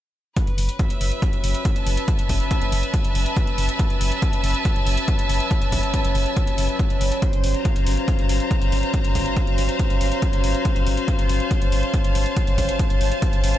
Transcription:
0.36 synth drone F#3 C#4, string section B4, kick, closed hi-hat
0.47 sub bass F#1, closed hi-hat
0.58 sub bass F#1, open hi-hat
0.69 closed hi-hat
0.79 string section E5, kick, closed hi-hat
0.90 sub bass F#1, closed hi-hat
1.01 sub bass F#1, open hi-hat
1.12 closed hi-hat
1.22 kick, closed hi-hat
1.33 sub bass F#1, closed hi-hat
1.44 sub bass F#1, open hi-hat
1.54 closed hi-hat
1.65 kick, closed hi-hat
1.76 sub bass F#1, string section A5, closed hi-hat
1.86 sub bass F#1, open hi-hat
1.97 closed hi-hat
2.08 kick, closed hi-hat
2.19 sub bass F#1, closed hi-hat
2.29 sub bass F#1, kick, open hi-hat
2.40 closed hi-hat
2.51 kick, closed hi-hat
2.62 sub bass F#1, closed hi-hat
2.72 sub bass F#1, open hi-hat
2.83 closed hi-hat
2.94 kick, closed hi-hat
3.04 sub bass F#1, closed hi-hat
3.15 sub bass F#1, open hi-hat
3.26 closed hi-hat
3.37 kick, closed hi-hat
3.47 sub bass F#1, closed hi-hat
3.58 sub bass F#1, open hi-hat
3.69 closed hi-hat
3.79 kick, closed hi-hat
3.90 sub bass F#1, closed hi-hat
4.01 sub bass F#1, open hi-hat
4.12 closed hi-hat
4.22 kick, closed hi-hat
4.33 sub bass F#1, closed hi-hat
4.44 sub bass F#1, open hi-hat
4.54 closed hi-hat
4.65 kick, closed hi-hat
4.76 sub bass F#1, closed hi-hat
4.86 sub bass F#1, open hi-hat
4.97 closed hi-hat
5.08 kick, closed hi-hat
5.19 sub bass F#1, closed hi-hat
5.29 sub bass F#1, open hi-hat
5.40 closed hi-hat
5.51 kick, closed hi-hat
5.62 sub bass F#1, closed hi-hat
5.72 sub bass F#1, kick, open hi-hat
5.83 closed hi-hat
5.94 kick, closed hi-hat
6.04 sub bass F#1, closed hi-hat
6.15 sub bass F#1, open hi-hat
6.26 closed hi-hat
6.37 kick, closed hi-hat
6.47 sub bass F#1, closed hi-hat
6.58 sub bass F#1, open hi-hat
6.69 closed hi-hat
6.79 kick, closed hi-hat
6.90 sub bass F#1, closed hi-hat
7.01 sub bass F#1, open hi-hat
7.12 closed hi-hat
7.22 string section C5, kick, closed hi-hat
7.33 sub bass G1, closed hi-hat
7.44 sub bass G1, open hi-hat
7.54 string section A#5, closed hi-hat
7.60 string section F5
7.65 kick, closed hi-hat
7.76 sub bass G1, closed hi-hat
7.86 sub bass G1, open hi-hat
7.97 closed hi-hat
8.08 kick, closed hi-hat
8.19 sub bass G1, closed hi-hat
8.29 sub bass G1, open hi-hat
8.40 closed hi-hat
8.51 kick, closed hi-hat
8.62 sub bass G1, closed hi-hat
8.72 sub bass G1, open hi-hat
8.83 closed hi-hat
8.94 kick, closed hi-hat
9.04 sub bass G1, closed hi-hat
9.15 sub bass G1, kick, open hi-hat
9.26 closed hi-hat
9.36 kick, closed hi-hat
9.47 sub bass G1, closed hi-hat
9.58 sub bass G1, open hi-hat
9.69 closed hi-hat
9.79 kick, closed hi-hat
9.90 sub bass G1, closed hi-hat
10.01 sub bass G1, open hi-hat
10.12 closed hi-hat
10.22 kick, closed hi-hat
10.33 sub bass G1, closed hi-hat
10.44 sub bass G1, open hi-hat
10.55 closed hi-hat
10.65 kick, closed hi-hat
10.76 sub bass G1, closed hi-hat
10.87 sub bass G1, open hi-hat
10.97 closed hi-hat
11.08 kick, closed hi-hat
11.15 sub bass G1, string section A5, closed hi-hat
11.29 sub bass G1, open hi-hat
11.40 closed hi-hat
11.51 kick, closed hi-hat
11.62 sub bass G1, closed hi-hat
11.72 sub bass G1, open hi-hat
11.83 closed hi-hat
11.94 kick, closed hi-hat
12.04 sub bass G1, closed hi-hat
12.15 sub bass G1, open hi-hat
12.26 closed hi-hat
12.37 kick, closed hi-hat
12.47 sub bass G1, closed hi-hat
12.58 sub bass G1, kick, open hi-hat
12.69 closed hi-hat
12.79 kick, closed hi-hat
12.90 sub bass G1, closed hi-hat
13.01 sub bass G1, open hi-hat
13.12 closed hi-hat
13.22 kick, closed hi-hat
13.33 sub bass G1, closed hi-hat
13.44 sub bass G1, open hi-hat
13.54 closed hi-hat

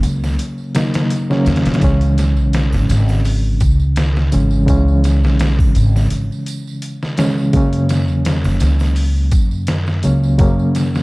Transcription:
Already playing: reed electric piano C#3 F#3 A#3 C#4
0.03 upright bass C#2, closed hi-hat, tambourine
0.23 snare, tambourine, triangle
0.39 closed hi-hat, tambourine
0.58 tambourine
0.75 reed electric piano C#3 F#3 A#3 D#4, snare, closed hi-hat, tambourine
0.94 snare, closed hi-hat, tambourine
1.10 closed hi-hat, tambourine
1.30 reed electric piano C#3 F#3 A#3 C#4, snare, tambourine
1.46 upright bass E2, snare, closed hi-hat, tambourine
1.56 snare, closed hi-hat
1.65 upright bass A#2, snare, closed hi-hat, tambourine
1.74 snare, closed hi-hat
1.81 upright bass C#2, reed electric piano C#3 E3 G#3 C#4, kick, closed hi-hat, tambourine
2.01 closed hi-hat, tambourine
2.18 snare, closed hi-hat, tambourine
2.37 upright bass B1, tambourine
2.53 snare, closed hi-hat, tambourine
2.72 upright bass G#1, snare, tambourine, triangle
2.89 upright bass G#1, snare, closed hi-hat, tambourine
3.08 snare, tambourine, triangle
3.25 open hi-hat, tambourine
3.44 tambourine
3.60 upright bass C#2, kick, closed hi-hat, tambourine
3.80 tambourine
3.96 snare, closed hi-hat, tambourine
4.16 snare, tambourine
4.32 upright bass G#1, reed electric piano C#3 E3 G#3 C#4, closed hi-hat, tambourine
4.51 tambourine
4.66 upright bass C#2, reed electric piano C#3 E3 G#3 C#4, kick, closed hi-hat, tambourine
4.88 tambourine
5.04 snare, closed hi-hat, tambourine
5.24 upright bass B1, snare, tambourine
5.39 snare, closed hi-hat, tambourine
5.59 upright bass G#1, kick, tambourine, triangle
5.75 upright bass G#1, closed hi-hat, tambourine
5.96 snare, tambourine, triangle
6.10 upright bass G#1, closed hi-hat, tambourine
6.32 tambourine
6.46 closed hi-hat, tambourine
6.67 tambourine
6.82 closed hi-hat, tambourine
7.02 snare, tambourine
7.17 reed electric piano C#3 E3 G#3 C#4, snare, closed hi-hat, tambourine
7.38 tambourine
7.53 upright bass F#2, reed electric piano C#3 F#3 A#3 C#4, kick, closed hi-hat, tambourine
7.73 closed hi-hat, tambourine
7.89 snare, closed hi-hat, tambourine
8.08 upright bass E2, tambourine
8.25 snare, closed hi-hat, tambourine
8.44 upright bass F#1, snare, tambourine, triangle
8.60 upright bass C#2, snare, closed hi-hat, tambourine
8.79 snare, tambourine, triangle
8.96 open hi-hat, tambourine
9.16 tambourine
9.31 upright bass F#2, kick, closed hi-hat, tambourine
9.51 tambourine
9.67 snare, closed hi-hat, tambourine
9.86 snare, tambourine
10.03 upright bass C#2, reed electric piano C#3 F#3 A#3 C#4, closed hi-hat, tambourine
10.23 tambourine
10.38 upright bass F#2, reed electric piano C#3 F#3 A#3 C#4, kick, closed hi-hat, tambourine
10.59 tambourine
10.75 snare, closed hi-hat, tambourine
10.95 upright bass E2, snare, tambourine

